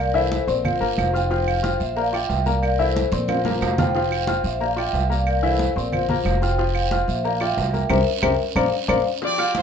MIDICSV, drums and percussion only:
0, 0, Header, 1, 2, 480
1, 0, Start_track
1, 0, Tempo, 329852
1, 1899, Time_signature, 4, 2, 24, 8
1, 14000, End_track
2, 0, Start_track
2, 0, Title_t, "Drums"
2, 222, Note_on_c, 9, 63, 36
2, 222, Note_on_c, 9, 68, 100
2, 367, Note_off_c, 9, 68, 0
2, 368, Note_off_c, 9, 63, 0
2, 460, Note_on_c, 9, 63, 99
2, 463, Note_on_c, 9, 66, 59
2, 475, Note_on_c, 9, 73, 63
2, 605, Note_off_c, 9, 63, 0
2, 609, Note_off_c, 9, 66, 0
2, 620, Note_off_c, 9, 73, 0
2, 704, Note_on_c, 9, 63, 35
2, 704, Note_on_c, 9, 73, 72
2, 849, Note_off_c, 9, 63, 0
2, 850, Note_off_c, 9, 73, 0
2, 941, Note_on_c, 9, 63, 37
2, 941, Note_on_c, 9, 64, 83
2, 941, Note_on_c, 9, 68, 107
2, 950, Note_on_c, 9, 75, 69
2, 957, Note_on_c, 9, 74, 67
2, 1087, Note_off_c, 9, 63, 0
2, 1087, Note_off_c, 9, 64, 0
2, 1087, Note_off_c, 9, 68, 0
2, 1096, Note_off_c, 9, 75, 0
2, 1102, Note_off_c, 9, 74, 0
2, 1184, Note_on_c, 9, 63, 33
2, 1329, Note_off_c, 9, 63, 0
2, 1423, Note_on_c, 9, 63, 89
2, 1426, Note_on_c, 9, 66, 85
2, 1426, Note_on_c, 9, 68, 107
2, 1436, Note_on_c, 9, 75, 68
2, 1437, Note_on_c, 9, 73, 73
2, 1569, Note_off_c, 9, 63, 0
2, 1572, Note_off_c, 9, 66, 0
2, 1572, Note_off_c, 9, 68, 0
2, 1581, Note_off_c, 9, 75, 0
2, 1583, Note_off_c, 9, 73, 0
2, 1660, Note_on_c, 9, 63, 35
2, 1682, Note_on_c, 9, 73, 74
2, 1805, Note_off_c, 9, 63, 0
2, 1827, Note_off_c, 9, 73, 0
2, 1905, Note_on_c, 9, 68, 78
2, 1911, Note_on_c, 9, 63, 34
2, 1912, Note_on_c, 9, 74, 77
2, 2051, Note_off_c, 9, 68, 0
2, 2056, Note_off_c, 9, 63, 0
2, 2058, Note_off_c, 9, 74, 0
2, 2145, Note_on_c, 9, 63, 39
2, 2147, Note_on_c, 9, 68, 125
2, 2150, Note_on_c, 9, 75, 75
2, 2290, Note_off_c, 9, 63, 0
2, 2292, Note_off_c, 9, 68, 0
2, 2296, Note_off_c, 9, 75, 0
2, 2384, Note_on_c, 9, 63, 102
2, 2386, Note_on_c, 9, 66, 65
2, 2386, Note_on_c, 9, 68, 79
2, 2392, Note_on_c, 9, 73, 69
2, 2529, Note_off_c, 9, 63, 0
2, 2531, Note_off_c, 9, 66, 0
2, 2531, Note_off_c, 9, 68, 0
2, 2538, Note_off_c, 9, 73, 0
2, 2622, Note_on_c, 9, 73, 66
2, 2623, Note_on_c, 9, 63, 32
2, 2768, Note_off_c, 9, 73, 0
2, 2769, Note_off_c, 9, 63, 0
2, 2858, Note_on_c, 9, 68, 88
2, 2860, Note_on_c, 9, 74, 69
2, 2869, Note_on_c, 9, 63, 34
2, 3003, Note_off_c, 9, 68, 0
2, 3005, Note_off_c, 9, 74, 0
2, 3015, Note_off_c, 9, 63, 0
2, 3093, Note_on_c, 9, 68, 96
2, 3108, Note_on_c, 9, 63, 37
2, 3116, Note_on_c, 9, 75, 60
2, 3238, Note_off_c, 9, 68, 0
2, 3253, Note_off_c, 9, 63, 0
2, 3261, Note_off_c, 9, 75, 0
2, 3338, Note_on_c, 9, 66, 81
2, 3338, Note_on_c, 9, 68, 72
2, 3348, Note_on_c, 9, 73, 67
2, 3350, Note_on_c, 9, 63, 34
2, 3484, Note_off_c, 9, 66, 0
2, 3484, Note_off_c, 9, 68, 0
2, 3494, Note_off_c, 9, 73, 0
2, 3495, Note_off_c, 9, 63, 0
2, 3580, Note_on_c, 9, 73, 81
2, 3586, Note_on_c, 9, 63, 75
2, 3726, Note_off_c, 9, 73, 0
2, 3731, Note_off_c, 9, 63, 0
2, 3820, Note_on_c, 9, 68, 112
2, 3824, Note_on_c, 9, 63, 34
2, 3827, Note_on_c, 9, 74, 80
2, 3832, Note_on_c, 9, 75, 66
2, 3966, Note_off_c, 9, 68, 0
2, 3970, Note_off_c, 9, 63, 0
2, 3973, Note_off_c, 9, 74, 0
2, 3978, Note_off_c, 9, 75, 0
2, 4060, Note_on_c, 9, 68, 95
2, 4078, Note_on_c, 9, 63, 37
2, 4205, Note_off_c, 9, 68, 0
2, 4224, Note_off_c, 9, 63, 0
2, 4300, Note_on_c, 9, 66, 58
2, 4307, Note_on_c, 9, 73, 68
2, 4313, Note_on_c, 9, 63, 102
2, 4445, Note_off_c, 9, 66, 0
2, 4452, Note_off_c, 9, 73, 0
2, 4458, Note_off_c, 9, 63, 0
2, 4536, Note_on_c, 9, 73, 73
2, 4545, Note_on_c, 9, 63, 77
2, 4682, Note_off_c, 9, 73, 0
2, 4691, Note_off_c, 9, 63, 0
2, 4774, Note_on_c, 9, 74, 57
2, 4782, Note_on_c, 9, 63, 95
2, 4784, Note_on_c, 9, 75, 67
2, 4788, Note_on_c, 9, 65, 88
2, 4788, Note_on_c, 9, 68, 111
2, 4920, Note_off_c, 9, 74, 0
2, 4927, Note_off_c, 9, 63, 0
2, 4929, Note_off_c, 9, 75, 0
2, 4934, Note_off_c, 9, 65, 0
2, 4934, Note_off_c, 9, 68, 0
2, 5019, Note_on_c, 9, 63, 107
2, 5026, Note_on_c, 9, 66, 92
2, 5164, Note_off_c, 9, 63, 0
2, 5171, Note_off_c, 9, 66, 0
2, 5257, Note_on_c, 9, 73, 71
2, 5271, Note_on_c, 9, 75, 65
2, 5272, Note_on_c, 9, 66, 102
2, 5272, Note_on_c, 9, 68, 105
2, 5402, Note_off_c, 9, 73, 0
2, 5416, Note_off_c, 9, 75, 0
2, 5418, Note_off_c, 9, 66, 0
2, 5418, Note_off_c, 9, 68, 0
2, 5504, Note_on_c, 9, 73, 74
2, 5505, Note_on_c, 9, 64, 114
2, 5511, Note_on_c, 9, 66, 95
2, 5650, Note_off_c, 9, 73, 0
2, 5651, Note_off_c, 9, 64, 0
2, 5657, Note_off_c, 9, 66, 0
2, 5742, Note_on_c, 9, 74, 69
2, 5750, Note_on_c, 9, 63, 30
2, 5751, Note_on_c, 9, 68, 67
2, 5887, Note_off_c, 9, 74, 0
2, 5895, Note_off_c, 9, 63, 0
2, 5896, Note_off_c, 9, 68, 0
2, 5984, Note_on_c, 9, 68, 115
2, 5986, Note_on_c, 9, 63, 36
2, 5997, Note_on_c, 9, 75, 75
2, 6129, Note_off_c, 9, 68, 0
2, 6132, Note_off_c, 9, 63, 0
2, 6143, Note_off_c, 9, 75, 0
2, 6219, Note_on_c, 9, 63, 100
2, 6229, Note_on_c, 9, 73, 73
2, 6237, Note_on_c, 9, 66, 59
2, 6237, Note_on_c, 9, 68, 85
2, 6364, Note_off_c, 9, 63, 0
2, 6375, Note_off_c, 9, 73, 0
2, 6383, Note_off_c, 9, 66, 0
2, 6383, Note_off_c, 9, 68, 0
2, 6467, Note_on_c, 9, 73, 72
2, 6472, Note_on_c, 9, 63, 32
2, 6613, Note_off_c, 9, 73, 0
2, 6618, Note_off_c, 9, 63, 0
2, 6710, Note_on_c, 9, 63, 33
2, 6710, Note_on_c, 9, 74, 68
2, 6711, Note_on_c, 9, 68, 84
2, 6856, Note_off_c, 9, 63, 0
2, 6856, Note_off_c, 9, 68, 0
2, 6856, Note_off_c, 9, 74, 0
2, 6945, Note_on_c, 9, 63, 38
2, 6954, Note_on_c, 9, 68, 92
2, 6959, Note_on_c, 9, 75, 57
2, 7090, Note_off_c, 9, 63, 0
2, 7099, Note_off_c, 9, 68, 0
2, 7104, Note_off_c, 9, 75, 0
2, 7190, Note_on_c, 9, 63, 36
2, 7192, Note_on_c, 9, 66, 86
2, 7192, Note_on_c, 9, 68, 71
2, 7196, Note_on_c, 9, 73, 70
2, 7335, Note_off_c, 9, 63, 0
2, 7338, Note_off_c, 9, 66, 0
2, 7338, Note_off_c, 9, 68, 0
2, 7342, Note_off_c, 9, 73, 0
2, 7447, Note_on_c, 9, 73, 71
2, 7593, Note_off_c, 9, 73, 0
2, 7665, Note_on_c, 9, 68, 117
2, 7665, Note_on_c, 9, 75, 66
2, 7667, Note_on_c, 9, 63, 34
2, 7686, Note_on_c, 9, 74, 78
2, 7810, Note_off_c, 9, 68, 0
2, 7810, Note_off_c, 9, 75, 0
2, 7812, Note_off_c, 9, 63, 0
2, 7832, Note_off_c, 9, 74, 0
2, 7905, Note_on_c, 9, 63, 36
2, 7907, Note_on_c, 9, 68, 91
2, 8050, Note_off_c, 9, 63, 0
2, 8053, Note_off_c, 9, 68, 0
2, 8139, Note_on_c, 9, 63, 101
2, 8148, Note_on_c, 9, 66, 59
2, 8164, Note_on_c, 9, 73, 62
2, 8285, Note_off_c, 9, 63, 0
2, 8294, Note_off_c, 9, 66, 0
2, 8310, Note_off_c, 9, 73, 0
2, 8381, Note_on_c, 9, 63, 33
2, 8414, Note_on_c, 9, 73, 67
2, 8527, Note_off_c, 9, 63, 0
2, 8559, Note_off_c, 9, 73, 0
2, 8622, Note_on_c, 9, 63, 35
2, 8622, Note_on_c, 9, 64, 79
2, 8628, Note_on_c, 9, 68, 100
2, 8634, Note_on_c, 9, 75, 71
2, 8640, Note_on_c, 9, 74, 60
2, 8767, Note_off_c, 9, 63, 0
2, 8767, Note_off_c, 9, 64, 0
2, 8773, Note_off_c, 9, 68, 0
2, 8780, Note_off_c, 9, 75, 0
2, 8785, Note_off_c, 9, 74, 0
2, 8859, Note_on_c, 9, 63, 38
2, 8859, Note_on_c, 9, 64, 80
2, 9004, Note_off_c, 9, 63, 0
2, 9004, Note_off_c, 9, 64, 0
2, 9104, Note_on_c, 9, 63, 80
2, 9105, Note_on_c, 9, 66, 90
2, 9105, Note_on_c, 9, 68, 108
2, 9107, Note_on_c, 9, 75, 64
2, 9116, Note_on_c, 9, 73, 67
2, 9250, Note_off_c, 9, 63, 0
2, 9251, Note_off_c, 9, 66, 0
2, 9251, Note_off_c, 9, 68, 0
2, 9252, Note_off_c, 9, 75, 0
2, 9262, Note_off_c, 9, 73, 0
2, 9341, Note_on_c, 9, 63, 36
2, 9358, Note_on_c, 9, 73, 76
2, 9486, Note_off_c, 9, 63, 0
2, 9504, Note_off_c, 9, 73, 0
2, 9580, Note_on_c, 9, 63, 31
2, 9587, Note_on_c, 9, 68, 67
2, 9593, Note_on_c, 9, 74, 74
2, 9726, Note_off_c, 9, 63, 0
2, 9732, Note_off_c, 9, 68, 0
2, 9739, Note_off_c, 9, 74, 0
2, 9818, Note_on_c, 9, 75, 70
2, 9826, Note_on_c, 9, 63, 37
2, 9826, Note_on_c, 9, 68, 118
2, 9964, Note_off_c, 9, 75, 0
2, 9971, Note_off_c, 9, 68, 0
2, 9972, Note_off_c, 9, 63, 0
2, 10059, Note_on_c, 9, 63, 100
2, 10072, Note_on_c, 9, 66, 58
2, 10072, Note_on_c, 9, 68, 85
2, 10080, Note_on_c, 9, 73, 71
2, 10205, Note_off_c, 9, 63, 0
2, 10218, Note_off_c, 9, 66, 0
2, 10218, Note_off_c, 9, 68, 0
2, 10225, Note_off_c, 9, 73, 0
2, 10297, Note_on_c, 9, 63, 35
2, 10318, Note_on_c, 9, 73, 81
2, 10442, Note_off_c, 9, 63, 0
2, 10463, Note_off_c, 9, 73, 0
2, 10541, Note_on_c, 9, 63, 36
2, 10546, Note_on_c, 9, 68, 84
2, 10556, Note_on_c, 9, 74, 67
2, 10687, Note_off_c, 9, 63, 0
2, 10691, Note_off_c, 9, 68, 0
2, 10702, Note_off_c, 9, 74, 0
2, 10774, Note_on_c, 9, 63, 35
2, 10776, Note_on_c, 9, 75, 68
2, 10786, Note_on_c, 9, 68, 100
2, 10920, Note_off_c, 9, 63, 0
2, 10922, Note_off_c, 9, 75, 0
2, 10932, Note_off_c, 9, 68, 0
2, 11020, Note_on_c, 9, 63, 36
2, 11028, Note_on_c, 9, 66, 91
2, 11028, Note_on_c, 9, 68, 74
2, 11028, Note_on_c, 9, 73, 79
2, 11166, Note_off_c, 9, 63, 0
2, 11173, Note_off_c, 9, 66, 0
2, 11173, Note_off_c, 9, 68, 0
2, 11174, Note_off_c, 9, 73, 0
2, 11265, Note_on_c, 9, 63, 75
2, 11271, Note_on_c, 9, 73, 72
2, 11410, Note_off_c, 9, 63, 0
2, 11417, Note_off_c, 9, 73, 0
2, 11489, Note_on_c, 9, 75, 102
2, 11498, Note_on_c, 9, 63, 106
2, 11504, Note_on_c, 9, 65, 101
2, 11509, Note_on_c, 9, 74, 108
2, 11635, Note_off_c, 9, 75, 0
2, 11644, Note_off_c, 9, 63, 0
2, 11650, Note_off_c, 9, 65, 0
2, 11655, Note_off_c, 9, 74, 0
2, 11973, Note_on_c, 9, 75, 107
2, 11974, Note_on_c, 9, 63, 110
2, 11990, Note_on_c, 9, 65, 100
2, 12119, Note_off_c, 9, 63, 0
2, 12119, Note_off_c, 9, 75, 0
2, 12135, Note_off_c, 9, 65, 0
2, 12452, Note_on_c, 9, 63, 89
2, 12461, Note_on_c, 9, 65, 103
2, 12463, Note_on_c, 9, 75, 100
2, 12597, Note_off_c, 9, 63, 0
2, 12607, Note_off_c, 9, 65, 0
2, 12609, Note_off_c, 9, 75, 0
2, 12930, Note_on_c, 9, 63, 102
2, 12938, Note_on_c, 9, 74, 98
2, 12940, Note_on_c, 9, 65, 94
2, 12941, Note_on_c, 9, 75, 101
2, 13076, Note_off_c, 9, 63, 0
2, 13083, Note_off_c, 9, 74, 0
2, 13086, Note_off_c, 9, 65, 0
2, 13087, Note_off_c, 9, 75, 0
2, 13414, Note_on_c, 9, 74, 81
2, 13417, Note_on_c, 9, 68, 75
2, 13423, Note_on_c, 9, 63, 34
2, 13560, Note_off_c, 9, 74, 0
2, 13563, Note_off_c, 9, 68, 0
2, 13568, Note_off_c, 9, 63, 0
2, 13660, Note_on_c, 9, 68, 122
2, 13663, Note_on_c, 9, 75, 78
2, 13666, Note_on_c, 9, 63, 37
2, 13805, Note_off_c, 9, 68, 0
2, 13809, Note_off_c, 9, 75, 0
2, 13811, Note_off_c, 9, 63, 0
2, 13890, Note_on_c, 9, 73, 66
2, 13894, Note_on_c, 9, 63, 99
2, 13904, Note_on_c, 9, 66, 60
2, 13904, Note_on_c, 9, 68, 89
2, 14000, Note_off_c, 9, 63, 0
2, 14000, Note_off_c, 9, 66, 0
2, 14000, Note_off_c, 9, 68, 0
2, 14000, Note_off_c, 9, 73, 0
2, 14000, End_track
0, 0, End_of_file